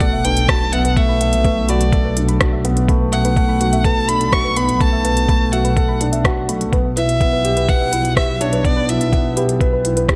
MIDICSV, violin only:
0, 0, Header, 1, 2, 480
1, 0, Start_track
1, 0, Key_signature, 2, "minor"
1, 0, Tempo, 480000
1, 967, Time_signature, 4, 2, 24, 8
1, 10155, End_track
2, 0, Start_track
2, 0, Title_t, "Violin"
2, 0, Program_c, 0, 40
2, 4, Note_on_c, 0, 78, 96
2, 248, Note_on_c, 0, 79, 106
2, 263, Note_off_c, 0, 78, 0
2, 484, Note_on_c, 0, 81, 104
2, 499, Note_off_c, 0, 79, 0
2, 723, Note_on_c, 0, 78, 98
2, 738, Note_off_c, 0, 81, 0
2, 968, Note_on_c, 0, 76, 108
2, 984, Note_off_c, 0, 78, 0
2, 1694, Note_on_c, 0, 74, 89
2, 1709, Note_off_c, 0, 76, 0
2, 2171, Note_off_c, 0, 74, 0
2, 3122, Note_on_c, 0, 78, 95
2, 3842, Note_on_c, 0, 81, 98
2, 3857, Note_off_c, 0, 78, 0
2, 4081, Note_on_c, 0, 83, 101
2, 4096, Note_off_c, 0, 81, 0
2, 4324, Note_on_c, 0, 85, 104
2, 4339, Note_off_c, 0, 83, 0
2, 4567, Note_on_c, 0, 83, 106
2, 4582, Note_off_c, 0, 85, 0
2, 4806, Note_on_c, 0, 81, 108
2, 4821, Note_off_c, 0, 83, 0
2, 5526, Note_on_c, 0, 78, 89
2, 5541, Note_off_c, 0, 81, 0
2, 6007, Note_off_c, 0, 78, 0
2, 6970, Note_on_c, 0, 76, 109
2, 7695, Note_on_c, 0, 78, 112
2, 7710, Note_off_c, 0, 76, 0
2, 8165, Note_off_c, 0, 78, 0
2, 8171, Note_on_c, 0, 76, 95
2, 8412, Note_on_c, 0, 73, 91
2, 8427, Note_off_c, 0, 76, 0
2, 8650, Note_on_c, 0, 74, 102
2, 8665, Note_off_c, 0, 73, 0
2, 8895, Note_on_c, 0, 76, 89
2, 8910, Note_off_c, 0, 74, 0
2, 9371, Note_off_c, 0, 76, 0
2, 10155, End_track
0, 0, End_of_file